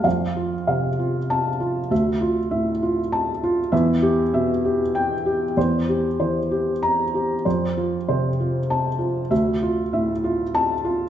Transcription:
<<
  \new Staff \with { instrumentName = "Felt piano" } { \time 6/8 \key f \major \tempo 4. = 65 f''8 f'8 f''8 f'4 f'8 | e''8 f'8 e''8 f'4 f'8 | e''8 g'8 e''8 g'4 g'8 | c''8 g'8 c''8 g'4 g'8 |
c''8 f'8 c''8 f'4 f'8 | e''8 f'8 e''8 f'4 f'8 | }
  \new Staff \with { instrumentName = "Felt piano" } { \clef bass \time 6/8 \key f \major f,4 c4 a''4 | d,4 a,4 a''4 | e,4 b,4 g''4 | e,4 e4 bes''4 |
f,4 c4 a''4 | d,4 a,4 a''4 | }
>>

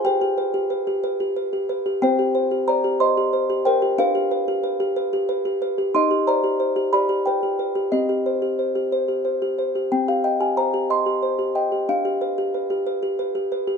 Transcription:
\new Staff \with { instrumentName = "Music box" } { \time 6/8 \key c \minor \tempo 4. = 61 << { <b' g''>4. r4. | <c'' g''>4 <d'' bes''>8 <ees'' c'''>4 <bes' g''>8 | <b' f''>2. | <ees'' c'''>8 <d'' bes''>4 <d'' b''>8 <b' g''>4 |
<g' ees''>4. r4. | g''16 f''16 g''16 aes''16 bes''8 c'''4 g''8 | f''2. | } \\ { g'16 g'16 b'16 g'16 b'16 g'16 b'16 g'16 b'16 g'16 b'16 g'16 | c'16 g'16 c''16 g'16 c''16 g'16 c''16 g'16 c''16 g'16 c''16 g'16 | d'16 g'16 b'16 g'16 b'16 g'16 b'16 g'16 b'16 g'16 b'16 g'16 | ees'16 g'16 c''16 g'16 c''16 g'16 g'16 g'8 g'16 b'16 g'16 |
c'16 g'16 c''16 g'16 c''16 g'16 c''16 g'16 c''16 g'16 c''16 g'16 | c'16 g'16 ees''16 g'16 c''16 g'16 ees''16 g'16 c''16 g'16 ees''16 g'16 | d'16 g'16 b'16 g'16 b'16 g'16 b'16 g'16 b'16 g'16 b'16 g'16 | } >> }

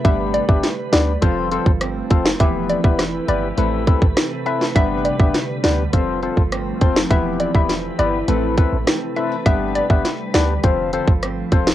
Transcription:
<<
  \new Staff \with { instrumentName = "Synth pluck" } { \time 4/4 \key a \minor \tempo 4 = 102 e''16 r16 d''16 e''16 r8 d''16 r2 r16 | e''16 r16 d''16 e''16 r8 d''16 r4. r16 e''16 r16 | e''16 r16 d''16 e''16 r8 d''16 r2 r16 | e''16 r16 d''16 e''16 r8 d''16 r4. r16 e''16 r16 |
e''16 r16 d''16 e''16 r8 d''16 r2 r16 | }
  \new Staff \with { instrumentName = "Synth stab" } { \time 4/4 \key a \minor <b d' g' b'>8. <b d' g' b'>16 r8 <b d' g' b'>16 r16 <c' f' a' c''>8 <c' f' a' c''>16 r8. <c' f' a' c''>16 r16 | <b e' g' b'>8. <b e' g' b'>16 r8 <b e' g' b'>16 r16 <c' e' a' b'>8 <c' e' a' b'>16 r8. <c' e' a' b'>16 r16 | <b d' g' b'>8. <b d' g' b'>16 r8 <b d' g' b'>16 r16 <c' f' a' c''>8 <c' f' a' c''>16 r8. <c' f' a' c''>16 r16 | <b e' g' b'>8. <b e' g' b'>16 r8 <b e' g' b'>16 r16 <c' e' a' b'>8 <c' e' a' b'>16 r8. <c' e' a' b'>16 r16 |
<b d' g' b'>8. <b d' g' b'>16 r8 <b d' g' b'>16 r16 <c' f' a' c''>8 <c' f' a' c''>16 r8. <c' f' a' c''>16 r16 | }
  \new Staff \with { instrumentName = "Nylon-string guitar" } { \time 4/4 \key a \minor g8 g'8 b'8 g'8 f8 a'8 c'8 f'8 | e8 e'8 b'8 e'8 a8 b'8 c'8 e'8 | g8 g'8 b'8 g'8 f8 a'8 c'8 f'8 | e8 e'8 b'8 e'8 a8 b'8 c'8 d'16 e'16 |
g8 g'8 b'8 g'8 f8 a'8 c'8 f'8 | }
  \new Staff \with { instrumentName = "Ambient pad" } { \time 4/4 \key a \minor << { b'2 c'2 | <e b'>2 b'2~ | b'2 c'2 | <e b'>2 b'2~ |
b'2 c'2 | } \\ { <d g>2 <f a>2 | <e' g'>2 <c a>2 | <d g>2 <f a>2 | <e' g'>2 <c a>2 |
<d g>2 <f a>2 | } >> }
  \new Staff \with { instrumentName = "808-style bass" } { \clef bass \time 4/4 \key a \minor g,,8. g,,16 r8 d,8 f,,8. g,,8. f,,8 | e,,8. e,,8. g,,8 a,,8. a,,16 r4 | g,,8. g,,16 r8 d,8 f,,8. g,,8. f,,8 | e,,8. e,,8. g,,8 a,,8. a,,16 r4 |
g,,8. g,,16 r8 d,8 f,,8. g,,8. f,,8 | }
  \new DrumStaff \with { instrumentName = "Drums" } \drummode { \time 4/4 <hh bd>8 hh16 bd16 <hh sn>8 <hh sn>8 <hh bd>8 hh16 bd16 <hh ss>8 <hh bd>16 sn16 | <hh bd>8 hh16 bd16 <hh ss sn>8 hh8 hh8 <hh bd>16 bd16 <hh ss sn>8 hh16 sn16 | <hh bd>8 hh16 bd16 <hh sn>8 <hh sn>8 <hh bd>8 hh16 bd16 <hh ss>8 <hh bd>16 sn16 | <hh bd>8 hh16 bd16 <hh sn>8 hh8 hh8 <hh bd>8 <hh ss sn>8 hh8 |
<hh bd>8 hh16 bd16 <hh sn>8 <hh sn>8 <hh bd>8 hh16 bd16 <hh ss>8 <hh bd>16 sn16 | }
>>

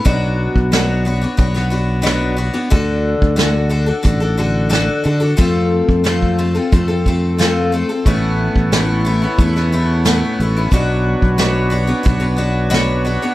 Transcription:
<<
  \new Staff \with { instrumentName = "Accordion" } { \time 4/4 \key b \dorian \tempo 4 = 90 r1 | r1 | r1 | <e' a' b' cis''>1 |
<d' fis' b' cis''>1 | }
  \new Staff \with { instrumentName = "Twelve-string acoustic guitar" } { \time 4/4 \key b \dorian <b, fis b d' fis' cis''>4 <b, fis b d' fis' cis''>8 <b d' fis' cis''>16 <b d' fis' cis''>16 <b d' fis' cis''>16 <b d' fis' cis''>16 <b d' fis' cis''>8 <b, fis b d' fis' cis''>8 <b d' fis' cis''>16 <b d' fis' cis''>16 | <d d' fis' a'>4 <d d' fis' a'>8 <d d' fis' a'>16 <d' fis' a'>16 <d d' fis' a'>16 <d' fis' a'>16 <d d' fis' a'>8 <d d' fis' a'>8 <d d' fis' a'>16 <d' fis' a'>16 | <f a c' f' a'>4 <f a c' f' a'>8 <a c' f' a'>16 <c' f' a'>16 <a c' f' a'>16 <c' f' a'>16 <a c' f' a'>8 <f a c' f' a'>8 <a c' f' a'>16 <c' f' a'>16 | <a, a b cis' e'>4 <a, a b cis' e'>8 <a b cis' e'>16 <b cis' e'>16 <a b cis' e'>16 <b cis' e'>16 <a b cis' e'>8 <a, a b cis' e'>8 <a b cis' e'>16 <b cis' e'>16 |
<b, fis b d' fis' cis''>4 <b, fis b d' fis' cis''>8 <b d' fis' cis''>16 <b d' fis' cis''>16 <b d' fis' cis''>16 <b d' fis' cis''>16 <b d' fis' cis''>8 <b, fis b d' fis' cis''>8 <b d' fis' cis''>16 <b d' fis' cis''>16 | }
  \new Staff \with { instrumentName = "Fingered electric bass" } { \clef bass \time 4/4 \key b \dorian b,,8. b,,4~ b,,16 b,,2 | d,8. d,4~ d,16 a,,4. d8 | f,8. f,4~ f,16 f,2 | a,,8. a,,4~ a,,16 e,4. a,,8 |
b,,8. b,,4~ b,,16 b,,2 | }
  \new DrumStaff \with { instrumentName = "Drums" } \drummode { \time 4/4 <hh bd>8. bd16 <hh sn>4 <hh bd>16 sn8. <hh sn>4 | <hh bd>8. bd16 <hh sn>4 <hh bd>4 <hh sn>4 | <hh bd>8. bd16 <hh sn>16 bd8. <hh bd>8 bd8 <hh sn>4 | <hh bd>8. bd16 <hh sn>4 <hh bd>16 sn8. <hh sn>4 |
<hh bd>8. bd16 <hh sn>4 <hh bd>4 <hh sn>4 | }
>>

